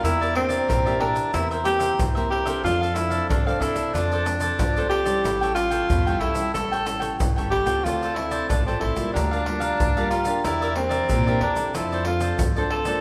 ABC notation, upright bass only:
X:1
M:4/4
L:1/16
Q:1/4=92
K:Dm
V:1 name="Upright bass" clef=bass
E,,4 B,,2 B,, z E,,4 E,,2 z2 | F,,4 C,,2 C,, z F,,4 A,,,2 z2 | A,,,4 E,,2 E,, z A,,,4 E,,, G,,, A,,, ^C,, | D,,4 A,,,2 A,,, z D,,4 D,,2 z2 |
E,,4 B,,2 E,, z F,,4 D,,2 z2 |]